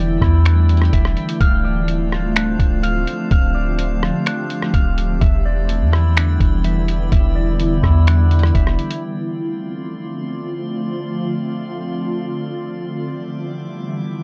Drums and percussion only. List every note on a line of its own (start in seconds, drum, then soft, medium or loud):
0.22 kick loud
0.22 cross-stick medium
0.45 finger snap loud
0.45 closed hi-hat medium
0.69 closed hi-hat medium
0.77 closed hi-hat medium
0.82 cross-stick loud
0.82 closed hi-hat soft
0.93 kick loud
0.93 closed hi-hat medium
1.05 cross-stick medium
1.17 closed hi-hat medium
1.29 closed hi-hat medium
1.41 kick loud
1.41 closed hi-hat medium
1.88 closed hi-hat medium
2.12 cross-stick medium
2.36 finger snap loud
2.36 closed hi-hat medium
2.59 kick medium
2.59 closed hi-hat medium
2.83 closed hi-hat medium
3.07 closed hi-hat medium
3.31 kick loud
3.31 closed hi-hat medium
3.79 closed hi-hat medium
4.03 cross-stick loud
4.26 finger snap loud
4.26 closed hi-hat medium
4.50 closed hi-hat medium
4.62 cross-stick loud
4.74 kick loud
4.74 closed hi-hat medium
4.98 closed hi-hat medium
5.21 kick loud
5.21 closed hi-hat medium
5.69 closed hi-hat medium
5.93 cross-stick loud
6.17 finger snap loud
6.17 closed hi-hat medium
6.40 kick medium
6.40 closed hi-hat medium
6.64 closed hi-hat medium
6.88 closed hi-hat medium
7.12 kick loud
7.12 closed hi-hat medium
7.60 closed hi-hat medium
7.83 kick loud
7.83 cross-stick medium
8.07 finger snap loud
8.07 closed hi-hat medium
8.31 closed hi-hat medium
8.39 closed hi-hat medium
8.43 cross-stick loud
8.43 closed hi-hat soft
8.55 kick medium
8.55 closed hi-hat medium
8.67 cross-stick loud
8.79 closed hi-hat medium
8.91 closed hi-hat medium